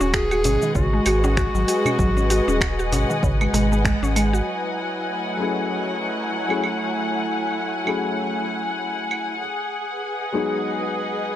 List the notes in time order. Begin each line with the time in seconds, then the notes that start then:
Already playing: G#3 F#4 F#5 G#5
0.00 D#1 C#4, shaker
0.13 F#4 G#4, finger snap, kick, shaker
0.19 B4
0.31 F#4, claves, shaker
0.44 G#1 C#4 D#5, closed hi-hat, darbuka ka, darbuka dum, shaker
0.62 D#3, shaker
0.75 G#1 C#3 F#4, kick, shaker
0.93 G#3
1.06 G#1 F#4, closed hi-hat, darbuka tek, claves, shaker
1.24 C#4, darbuka ka, darbuka tek, shaker
1.37 F#4, finger snap, kick, shaker
1.54 G#1 F#3, darbuka ka, shaker
1.68 F#4, closed hi-hat, darbuka tek, shaker
1.85 C#4, darbuka dum, claves, shaker
1.99 G#1 F#3, kick, shaker
2.17 C#4, shaker
2.30 F#4, closed hi-hat, darbuka ka, darbuka tek, shaker
2.48 D#1 C#4, shaker
2.61 F#4, finger snap, kick, claves, shaker
2.79 F#4, shaker
2.91 G#1 C#4, closed hi-hat, darbuka ka, darbuka dum, shaker
3.10 D#3, darbuka tek, shaker
3.23 G#1 C#3, kick, shaker
3.41 G#3, darbuka tek, claves
3.53 G#1 G#3, closed hi-hat, darbuka dum, shaker
3.72 G#3, shaker
3.85 G#3, finger snap, kick, darbuka tek, shaker
4.02 G#1 C#4, darbuka ka, shaker
4.16 G#3, closed hi-hat, darbuka ka, darbuka tek, claves, shaker
4.33 F#4, shaker
4.45 F#3
4.52 E4
5.08 A3
5.37 F#3 A3 C#4 E4
5.41 G#4
6.48 F#3 A3 C#4 E4 G#4, claves
6.64 claves
7.84 F#3 A3 C#4 E4 G#4, claves
9.11 claves
9.41 G#4
9.92 B4
10.17 D#5
10.32 F#3 G#3 B3 D#4 G#4